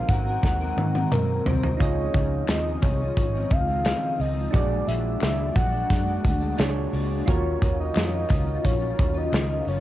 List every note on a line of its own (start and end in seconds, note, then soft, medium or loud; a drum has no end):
0.00 1.77 G#3 medium
0.00 1.78 C4 medium
0.00 1.75 D#4 medium
0.00 1.76 F#4 medium
0.00 1.78 F#4 medium
0.00 1.76 A#4 medium
0.00 1.77 C5 medium
0.00 0.11 F5 loud
0.08 0.36 G#1 medium
0.08 0.26 F#3 medium
0.08 0.26 C4 medium
0.08 0.26 D#4 medium
0.08 0.25 A#4 medium
0.08 1.13 F#5 loud
0.08 kick loud
0.08 closed hi-hat medium
0.26 0.62 F#3 soft
0.26 0.61 C4 soft
0.26 0.60 D#4 medium
0.26 0.59 A#4 medium
0.43 0.70 D#2 loud
0.43 kick medium
0.43 snare medium
0.60 0.95 F#3 soft
0.60 0.95 C4 medium
0.60 0.94 D#4 medium
0.60 0.93 A#4 medium
0.77 1.04 G#2 medium
0.77 high tom medium
0.95 1.12 F#3 soft
0.95 1.12 C4 soft
0.95 1.12 D#4 soft
0.95 1.12 A#4 soft
0.95 high tom medium
1.12 1.39 F#2 medium
1.12 1.46 G#2 medium
1.12 1.46 D#3 medium
1.12 1.46 F#3 medium
1.12 1.47 C4 medium
1.12 1.47 D#4 medium
1.12 1.48 A#4 loud
1.12 1.47 A#4 medium
1.12 clap medium
1.12 mid tom medium
1.46 1.73 C2 medium
1.46 1.64 F#3 medium
1.46 1.64 C4 medium
1.46 1.64 D#4 medium
1.46 1.63 A#4 medium
1.46 1.79 C5 medium
1.46 floor tom loud
1.63 1.80 F#3 soft
1.63 1.82 C4 soft
1.63 1.80 D#4 medium
1.63 1.81 A#4 soft
1.63 floor tom medium
1.77 2.08 C#2 loud
1.77 2.13 C#3 medium
1.77 4.50 D#3 medium
1.77 2.14 F3 medium
1.77 4.50 G#3 medium
1.77 4.48 D#4 medium
1.77 4.50 D#4 medium
1.77 4.50 F4 medium
1.77 4.49 F4 medium
1.77 4.50 G#4 medium
1.77 2.44 C#5 loud
1.77 kick loud
1.77 closed hi-hat medium
1.82 2.15 D#4 medium
1.82 4.51 D#5 medium
2.14 2.42 C#2 loud
2.14 2.48 C#3 medium
2.14 2.48 F3 medium
2.14 2.49 D#4 medium
2.14 kick loud
2.14 closed hi-hat medium
2.48 2.76 D#2 medium
2.48 2.81 C#3 medium
2.48 2.82 F3 medium
2.48 2.83 C4 medium
2.48 2.84 D#4 medium
2.48 2.83 D#5 loud
2.48 snare loud
2.48 clap medium
2.48 closed hi-hat loud
2.82 3.10 C2 medium
2.82 3.00 C#3 medium
2.82 3.00 F3 medium
2.82 3.01 C4 medium
2.82 2.98 D#4 medium
2.82 3.53 C#5 loud
2.82 kick loud
2.82 clap medium
2.82 closed hi-hat medium
2.99 3.35 F3 soft
2.99 3.33 D#4 medium
3.17 3.44 G#1 medium
3.17 kick medium
3.17 closed hi-hat medium
3.34 3.69 F3 soft
3.34 3.68 C4 medium
3.34 3.66 D#4 medium
3.50 3.92 C#2 loud
3.50 4.22 F5 loud
3.50 kick loud
3.50 closed hi-hat medium
3.67 3.84 F3 soft
3.67 3.84 C4 soft
3.67 3.84 D#4 soft
3.84 4.17 C#3 medium
3.84 4.18 F3 medium
3.84 4.19 C4 medium
3.84 4.20 D#4 medium
3.84 snare loud
3.84 clap medium
3.84 closed hi-hat loud
4.18 4.47 C#2 medium
4.18 4.36 C#3 medium
4.18 4.36 F3 medium
4.18 4.35 C4 medium
4.18 4.34 D#4 medium
4.18 4.56 D#5 loud
4.18 open hi-hat medium
4.35 4.53 F3 soft
4.35 4.54 C4 soft
4.35 4.53 D#4 medium
4.51 4.81 A#1 loud
4.51 4.85 A#2 medium
4.51 4.86 F#3 medium
4.51 7.24 G#3 medium
4.51 4.87 G#3 medium
4.51 7.25 A#3 medium
4.51 6.54 D4 medium
4.51 7.25 D4 medium
4.51 4.88 D4 medium
4.51 6.55 F#4 medium
4.51 6.55 G#4 medium
4.51 4.89 D5 loud
4.51 kick loud
4.51 closed hi-hat medium
4.56 6.56 D5 medium
4.87 5.15 A#1 medium
4.87 5.20 A#2 medium
4.87 5.20 F#3 medium
4.87 5.21 G#3 medium
4.87 5.21 D4 medium
4.87 5.22 E5 loud
4.87 closed hi-hat medium
5.21 5.50 C#2 medium
5.21 5.53 A#2 medium
5.21 5.54 F#3 medium
5.21 5.55 G#3 medium
5.21 5.55 D4 medium
5.21 5.55 E5 loud
5.21 snare loud
5.21 clap medium
5.21 closed hi-hat loud
5.54 5.84 A#1 medium
5.54 5.72 A#2 medium
5.54 5.73 F#3 medium
5.54 5.71 G#3 medium
5.54 5.70 D4 medium
5.54 6.55 F#5 loud
5.54 kick loud
5.54 closed hi-hat medium
5.71 6.08 F#3 soft
5.71 6.06 G#3 medium
5.71 6.05 D4 medium
5.90 6.18 F#2 medium
5.90 kick medium
5.90 snare soft
5.90 closed hi-hat medium
6.06 6.41 F#3 soft
6.06 6.40 G#3 medium
6.06 6.39 D4 medium
6.25 6.52 D2 loud
6.25 kick medium
6.25 closed hi-hat medium
6.40 6.55 F#3 soft
6.40 6.56 G#3 medium
6.40 6.57 D4 medium
6.56 6.86 C#2 medium
6.56 6.90 A#2 medium
6.56 6.91 F#3 medium
6.56 6.92 G#3 loud
6.56 7.27 D4 medium
6.56 6.92 D4 loud
6.56 7.26 F#4 medium
6.56 7.28 G#4 medium
6.56 7.28 C#5 medium
6.56 snare loud
6.56 closed hi-hat loud
6.60 clap medium
6.91 7.21 C#2 medium
6.91 7.09 A#2 medium
6.91 7.10 F#3 medium
6.91 7.10 G#3 medium
6.91 7.08 D4 medium
6.91 open hi-hat soft
7.09 7.26 F#3 soft
7.09 7.27 G#3 soft
7.09 7.27 D4 soft
7.26 7.55 D#2 loud
7.26 7.59 D#3 medium
7.26 9.80 D#3 medium
7.26 7.60 F#3 medium
7.26 9.80 C#4 medium
7.26 7.61 C#4 medium
7.26 9.80 D#4 medium
7.26 9.80 F4 medium
7.26 7.62 F4 medium
7.26 9.80 F#4 medium
7.26 9.80 A#4 medium
7.26 7.76 C#5 loud
7.26 9.80 F5 medium
7.26 kick loud
7.26 closed hi-hat medium
7.30 9.80 C#5 medium
7.60 7.89 D#2 medium
7.60 7.93 D#3 medium
7.60 7.96 F#3 medium
7.60 7.94 C#4 medium
7.60 7.94 F4 medium
7.60 kick loud
7.60 closed hi-hat loud
7.80 7.95 D#5 medium
7.94 8.23 F2 loud
7.94 8.27 D#3 medium
7.94 8.29 C#4 medium
7.94 8.29 F4 medium
7.94 8.66 D#5 loud
7.94 snare loud
7.94 clap medium
7.94 closed hi-hat loud
8.28 8.58 C#2 loud
8.28 8.46 D#3 medium
8.28 8.46 F#3 medium
8.28 8.45 C#4 medium
8.28 8.44 F4 medium
8.28 kick loud
8.28 clap medium
8.28 closed hi-hat medium
8.45 8.80 F#3 soft
8.45 8.80 C#4 medium
8.45 8.78 F4 medium
8.64 8.92 A#1 medium
8.64 9.19 C#5 loud
8.64 kick medium
8.64 closed hi-hat loud
8.79 9.16 F#3 soft
8.79 9.14 C#4 medium
8.79 9.13 F4 medium
8.99 9.26 D#2 medium
8.99 kick loud
8.99 closed hi-hat medium
9.14 9.30 F#3 soft
9.14 9.31 C#4 soft
9.14 9.31 F4 medium
9.14 9.70 D#5 loud
9.31 9.60 C#2 medium
9.31 9.63 D#3 medium
9.31 9.64 F#3 medium
9.31 9.66 C#4 medium
9.31 9.67 F4 medium
9.31 snare loud
9.31 clap medium
9.31 closed hi-hat loud
9.65 9.80 F#1 medium
9.65 9.80 D#3 medium
9.65 9.80 F#3 medium
9.65 9.80 C#4 medium
9.65 9.80 F4 medium
9.65 9.80 C#5 loud
9.65 open hi-hat soft